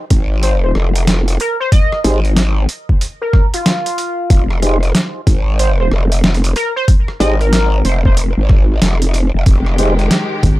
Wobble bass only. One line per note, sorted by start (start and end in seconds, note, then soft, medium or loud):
0.11 0.73 G#1 loud
0.75 1.38 F1 loud
2.04 2.67 G#1 medium
4.30 4.93 F1 medium
5.27 5.90 G#1 medium
5.91 6.54 F1 loud
7.20 7.83 G#1 medium
7.85 8.34 F1 medium
8.37 8.80 G#1 loud
8.82 9.31 F1 medium
9.34 9.44 F1 loud
9.46 10.09 F1 loud